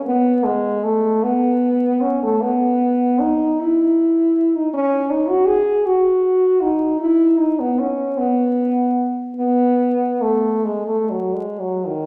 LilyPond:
\new Staff \with { instrumentName = "French horn" } { \time 6/8 \key b \mixolydian \tempo 4. = 51 b8 gis8 a8 b4 cis'16 a16 | b4 dis'8 e'4~ e'16 dis'16 | cis'8 dis'16 fis'16 gis'8 fis'4 dis'8 | e'8 dis'16 b16 cis'8 b4~ b16 r16 |
b4 a8 gis16 a16 fis16 gis16 fis16 dis16 | }